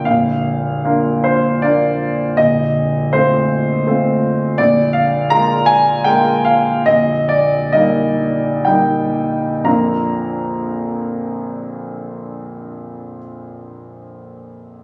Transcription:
<<
  \new Staff \with { instrumentName = "Grand piano" } { \time 3/4 \key bes \major \tempo 4 = 72 f''4. c''8 d''4 | ees''4 c''4 r4 | d''8 f''8 bes''8 aes''8 g''8 f''8 | ees''8 d''8 ees''4 g''4 |
<bes,, f, f bes d' f' bes''>2.~ | <bes,, f, f bes d' f' bes''>2. | }
  \new Staff \with { instrumentName = "Grand piano" } { \time 3/4 \key bes \major <bes,,, bes,,>4 <bes d' f'>4 <bes d' f'>4 | <bes,,, bes,,>4 <a c' f'>4 <a c' f'>4 | <bes,,, bes,,>4 <aes bes f'>4 <aes bes f'>4 | <bes,,, bes,,>4 <g bes ees'>4 <g bes ees'>4 |
r2. | r2. | }
>>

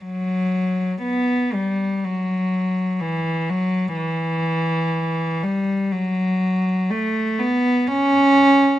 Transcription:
\new Staff \with { instrumentName = "Cello" } { \clef bass \time 3/4 \key fis \phrygian \tempo 4 = 61 fis4 b8 g8 fis4 | e8 fis8 e4. g8 | fis4 a8 b8 cis'4 | }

